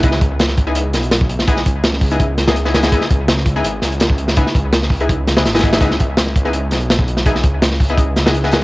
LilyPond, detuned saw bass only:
\new Staff \with { instrumentName = "Detuned saw bass" } { \clef bass \time 4/4 \key cis \minor \tempo 4 = 166 cis,2~ cis,8 b,,4.~ | b,,8 cis,2.~ cis,8 | r8 cis,4. gis,,8 cis,4. | r8 cis,2~ cis,8 gis,,4 |
cis,2~ cis,8 b,,4.~ | b,,8 cis,2.~ cis,8 | }